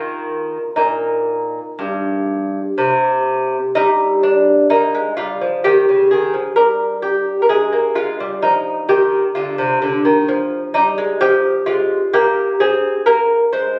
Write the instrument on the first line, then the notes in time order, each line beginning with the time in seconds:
lute
Already playing: D#3 A#3 F4
0.76 A#2 D#4
1.79 G2
2.78 C3
3.75 G3 D#4
4.23 D4
4.70 A#3 D#4
4.94 G#3
5.17 G3 F4
5.41 F3
5.64 D#3 G4
5.89 C#3
6.11 D#3 G#4
6.34 F3
6.56 G3 A#4
7.02 G4
7.42 A#4
7.49 G#3 G#4
7.72 A#3
7.95 G#3 F4
8.20 G3
8.42 F3 D#4
8.89 D#3 G4
9.35 D3 F4
9.58 C3
9.82 D3
10.05 D#3
10.28 F3
10.74 G3 D#4
10.98 G#3
11.21 F3 G4
11.66 G#3 F4
12.13 A#3 G4
12.60 C4 G#4
13.06 A#3 A#4
13.53 G#3 C5